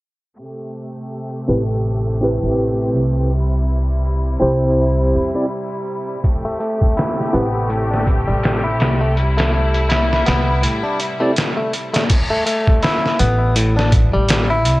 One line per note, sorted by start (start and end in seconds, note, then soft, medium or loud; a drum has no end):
0.39 6.20 C3 medium
0.39 3.29 A3 medium
0.39 3.29 G4 medium
1.48 2.39 A1 medium
1.48 1.61 C4 medium
1.48 1.61 E4 medium
1.48 1.62 G4 medium
1.48 1.62 B4 medium
2.21 3.29 C4 medium
2.21 3.30 E4 medium
2.21 3.30 G4 medium
2.21 3.31 B4 medium
2.43 2.95 A1 medium
2.95 4.38 C2 medium
3.31 6.21 G3 medium
3.31 6.21 E4 medium
4.40 5.12 C2 medium
4.40 5.30 C4 medium
4.40 5.30 E4 medium
4.40 5.30 G4 medium
4.40 5.31 C5 medium
5.15 5.33 E2 medium
5.35 5.44 C4 medium
5.35 5.45 E4 medium
5.35 5.45 G4 medium
5.35 5.45 D5 medium
6.22 12.05 C3 medium
6.22 9.13 A3 medium
6.22 9.13 G4 medium
6.22 kick medium
6.22 closed hi-hat medium
6.45 6.59 A3 medium
6.60 6.96 A3 medium
6.60 closed hi-hat medium
6.82 kick medium
6.97 7.32 E4 medium
6.97 snare loud
6.97 closed hi-hat medium
7.21 snare soft
7.33 8.24 A1 medium
7.33 7.69 B3 medium
7.33 7.46 C4 medium
7.33 7.46 E4 medium
7.33 7.47 G4 medium
7.33 7.47 B4 medium
7.33 closed hi-hat medium
7.69 7.89 A2 medium
7.69 closed hi-hat medium
7.91 8.06 D4 medium
7.91 snare soft
8.07 kick medium
8.07 closed hi-hat medium
8.28 8.80 A1 medium
8.28 8.62 G3 medium
8.43 snare loud
8.43 closed hi-hat medium
8.64 8.99 E4 medium
8.80 10.24 C2 medium
8.80 snare loud
8.80 closed hi-hat medium
9.01 9.16 A3 medium
9.17 12.07 G3 medium
9.17 12.07 E4 medium
9.17 closed hi-hat medium
9.37 9.52 A3 medium
9.37 snare medium
9.37 closed hi-hat medium
9.53 9.88 A3 medium
9.74 closed hi-hat soft
9.89 10.25 E4 medium
9.89 snare loud
9.89 closed hi-hat medium
10.13 snare soft
10.26 10.64 C2 medium
10.26 10.61 B3 medium
10.26 snare loud
10.26 closed hi-hat medium
10.62 10.82 A2 medium
10.62 closed hi-hat medium
10.83 10.99 D4 medium
11.00 closed hi-hat medium
11.20 11.34 A3 medium
11.20 11.30 C4 medium
11.20 11.30 E4 medium
11.20 11.30 G4 medium
11.20 11.31 D5 medium
11.36 snare medium
11.36 closed hi-hat medium
11.57 11.72 A3 medium
11.73 closed hi-hat medium
11.93 12.03 A3 medium
11.93 snare medium
11.93 closed hi-hat medium
12.09 kick loud
12.09 closed hi-hat medium
12.09 crash medium
12.30 12.45 A3 medium
12.46 12.81 A3 medium
12.46 closed hi-hat medium
12.67 kick medium
12.82 13.18 E4 medium
12.82 snare loud
12.82 closed hi-hat medium
13.05 snare soft
13.19 14.10 A1 medium
13.19 13.54 B3 medium
13.19 closed hi-hat medium
13.56 13.75 A2 medium
13.56 closed hi-hat medium
13.77 13.92 D4 medium
13.77 snare soft
13.92 kick medium
13.92 closed hi-hat medium
14.14 14.66 A1 medium
14.14 14.48 G3 medium
14.29 snare loud
14.29 closed hi-hat medium
14.50 14.80 E4 medium
14.65 14.80 C2 medium
14.65 closed hi-hat medium